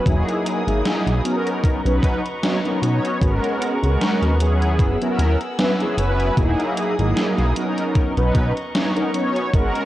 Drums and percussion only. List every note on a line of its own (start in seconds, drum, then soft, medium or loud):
0.06 kick loud
0.06 closed hi-hat medium
0.28 closed hi-hat soft
0.46 closed hi-hat loud
0.68 closed hi-hat soft
0.85 snare loud
0.85 closed hi-hat medium
1.07 closed hi-hat soft
1.25 closed hi-hat loud
1.47 closed hi-hat soft
1.64 kick loud
1.64 closed hi-hat medium
1.86 closed hi-hat soft
2.03 kick loud
2.03 closed hi-hat loud
2.26 closed hi-hat soft
2.43 snare loud
2.43 closed hi-hat medium
2.65 closed hi-hat soft
2.83 closed hi-hat medium
3.05 closed hi-hat soft
3.21 kick loud
3.21 closed hi-hat medium
3.44 closed hi-hat soft
3.62 closed hi-hat medium
3.83 closed hi-hat soft
4.01 snare loud
4.01 closed hi-hat medium
4.23 closed hi-hat soft
4.40 closed hi-hat loud
4.62 closed hi-hat soft
4.79 kick loud
4.79 closed hi-hat medium
5.02 closed hi-hat soft
5.19 closed hi-hat loud
5.41 closed hi-hat soft
5.59 snare loud
5.59 closed hi-hat medium
5.81 closed hi-hat soft
5.98 closed hi-hat medium
6.20 closed hi-hat soft
6.37 kick loud
6.37 closed hi-hat medium
6.60 closed hi-hat soft
6.77 closed hi-hat loud
6.99 closed hi-hat soft
7.17 snare loud
7.17 closed hi-hat medium
7.38 closed hi-hat soft
7.56 closed hi-hat loud
7.78 closed hi-hat soft
7.95 kick loud
7.95 closed hi-hat medium
8.17 closed hi-hat soft
8.35 kick loud
8.35 closed hi-hat medium
8.57 closed hi-hat soft
8.75 snare loud
8.75 closed hi-hat medium
8.96 closed hi-hat soft
9.14 closed hi-hat medium
9.36 closed hi-hat soft
9.53 kick loud
9.53 closed hi-hat medium
9.75 closed hi-hat soft